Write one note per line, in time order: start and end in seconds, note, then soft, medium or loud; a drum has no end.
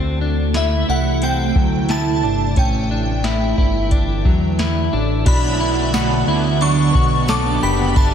0.00 0.84 D2 medium
0.00 2.54 C3 medium
0.00 5.23 E3 medium
0.00 5.22 A3 medium
0.00 0.21 C4 medium
0.00 2.54 E4 medium
0.21 0.55 D4 medium
0.54 0.87 E4 medium
0.54 0.90 E5 medium
0.54 snare loud
0.54 closed hi-hat medium
0.88 1.52 C2 medium
0.88 1.22 E4 medium
0.88 1.24 F#5 medium
1.22 1.56 C4 medium
1.22 1.92 G5 medium
1.22 closed hi-hat medium
1.55 2.24 D2 loud
1.55 1.90 F#3 medium
1.55 kick medium
1.89 2.23 E4 medium
1.89 2.59 A5 medium
1.89 snare medium
1.89 closed hi-hat soft
2.22 2.55 G1 medium
2.22 2.57 D4 medium
2.56 3.54 A1 medium
2.56 5.24 D3 medium
2.56 2.91 C#4 medium
2.56 5.24 E4 medium
2.56 4.90 G5 medium
2.56 kick loud
2.56 closed hi-hat medium
2.91 3.24 D4 medium
3.24 3.57 E4 medium
3.24 snare medium
3.24 closed hi-hat medium
3.58 4.26 G1 medium
3.58 3.92 E4 medium
3.58 kick medium
3.91 4.25 D4 medium
3.91 kick medium
3.91 closed hi-hat medium
4.25 4.89 E2 medium
4.25 4.59 F#3 medium
4.25 kick medium
4.59 4.93 E4 medium
4.59 snare medium
4.59 closed hi-hat soft
4.93 5.25 A1 medium
4.93 5.25 D4 medium
5.25 6.24 B1 loud
5.25 5.60 B2 medium
5.25 7.93 D3 medium
5.25 5.60 F#3 medium
5.25 7.94 B3 medium
5.25 5.60 B3 medium
5.25 5.60 D4 medium
5.25 8.14 D4 medium
5.25 5.60 D4 medium
5.25 5.57 F#4 medium
5.25 7.44 D5 medium
5.25 7.93 F#5 medium
5.25 6.66 B5 medium
5.25 kick loud
5.25 crash loud
5.25 ride soft
5.58 5.94 D4 medium
5.58 5.94 E4 medium
5.58 5.93 F#4 medium
5.64 5.93 B3 soft
5.92 6.27 F#3 medium
5.92 6.28 B3 medium
5.92 6.28 F#4 medium
5.92 snare loud
5.92 ride medium
5.92 tambourine medium
5.96 6.27 D4 medium
5.96 6.24 F#4 medium
6.26 6.91 D2 medium
6.26 6.62 D4 medium
6.26 6.62 E4 medium
6.26 6.60 F#4 medium
6.26 8.14 B5 medium
6.31 6.61 B3 medium
6.60 6.94 B2 medium
6.60 6.95 F#3 medium
6.60 6.95 B3 medium
6.60 6.95 D4 medium
6.60 6.92 F#4 medium
6.60 7.31 C#6 loud
6.60 ride soft
6.93 7.59 B1 medium
6.93 7.29 D4 soft
6.93 7.28 F#4 medium
6.93 kick medium
6.98 7.28 B3 soft
7.27 7.61 F#3 medium
7.27 7.63 B3 medium
7.27 7.62 D4 medium
7.27 7.62 A4 medium
7.27 7.64 D6 medium
7.27 snare loud
7.27 ride soft
7.27 tambourine medium
7.32 7.59 F#4 medium
7.60 7.94 F#1 medium
7.60 7.96 D4 medium
7.60 7.95 F#4 medium
7.60 7.96 G4 medium
7.60 7.98 B5 loud
7.66 7.96 B3 soft
7.95 8.14 G1 loud
7.95 8.14 G3 medium
7.95 8.14 A3 medium
7.95 8.14 D4 medium
7.95 8.14 G4 loud
7.95 8.14 A4 medium
7.95 8.14 A5 medium
7.95 kick loud
7.95 ride medium